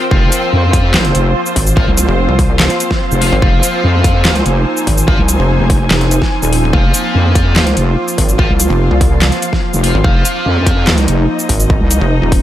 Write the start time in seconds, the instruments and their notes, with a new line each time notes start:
Already playing: ambient pad F3 A#4, string section C4 F4 C5 G5
0.11 wobble bass F1, ambient pad A#3 F4, distorted electric guitar F4 C5 F5, kick
0.32 closed hi-hat, shaker
0.53 wobble bass F2
0.73 kick, closed hi-hat
0.94 distorted electric guitar F4 C5 F5, snare, clap
1.01 string section F5, closed hi-hat
1.15 wobble bass F1, closed hi-hat
1.46 shaker
1.56 wobble bass G#1, kick, open hi-hat
1.67 shaker
1.76 distorted electric guitar F4 C5 F5, kick
1.87 wobble bass C2
1.97 closed hi-hat, shaker
2.08 wobble bass F1
2.29 wobble bass C2
2.39 kick, open hi-hat
2.60 snare, clap
2.70 closed hi-hat
2.80 closed hi-hat, shaker
2.91 kick, snare
3.11 wobble bass F1, shaker
3.21 distorted electric guitar F4 C5 F5, open hi-hat
3.32 wobble bass G#1
3.42 wobble bass F1, ambient pad D#4, distorted electric guitar F4 C5 F5, kick
3.63 closed hi-hat, shaker
3.84 wobble bass F2
4.04 kick, closed hi-hat
4.25 distorted electric guitar F4 C5 F5, snare, clap
4.32 string section G#5, closed hi-hat
4.46 wobble bass F1, closed hi-hat
4.77 shaker
4.87 wobble bass G#1, kick, open hi-hat
4.98 shaker
5.08 distorted electric guitar F4 C5 F5, kick
5.18 wobble bass C2
5.29 closed hi-hat, shaker
5.39 wobble bass F1
5.60 wobble bass F1
5.70 kick, open hi-hat
5.91 wobble bass F1, snare, clap
6.01 closed hi-hat
6.11 closed hi-hat, shaker
6.22 kick, snare
6.42 wobble bass D#1, shaker
6.53 open hi-hat
6.73 wobble bass F1, distorted electric guitar F4 C5 F5, ambient pad F4, kick
6.94 closed hi-hat, shaker
7.15 wobble bass F2
7.35 kick, closed hi-hat
7.56 distorted electric guitar F4 C5 F5, snare, clap
7.63 string section F5, closed hi-hat
7.77 wobble bass F1, closed hi-hat
8.08 shaker
8.18 wobble bass G#1, kick, open hi-hat
8.29 shaker
8.39 distorted electric guitar F4 C5 F5, kick
8.49 wobble bass C2
8.60 closed hi-hat, shaker
8.70 wobble bass F1
8.91 wobble bass C2
9.01 kick, open hi-hat
9.22 snare, clap
9.32 closed hi-hat
9.42 closed hi-hat, shaker
9.53 kick, snare
9.74 wobble bass F1, shaker
9.83 distorted electric guitar F4 C5 F5, open hi-hat
9.94 wobble bass G#1
10.04 wobble bass F1, ambient pad D#4, distorted electric guitar F4 C5 F5, kick
10.25 closed hi-hat, shaker
10.46 wobble bass F2
10.66 kick, closed hi-hat
10.87 snare, clap
10.94 string section D#5, closed hi-hat
11.08 wobble bass F1, closed hi-hat
11.39 shaker
11.49 wobble bass G#1, kick, open hi-hat
11.60 shaker
11.70 kick
11.80 wobble bass C2
11.91 closed hi-hat, shaker
12.01 wobble bass F1
12.22 wobble bass D#1
12.32 kick, open hi-hat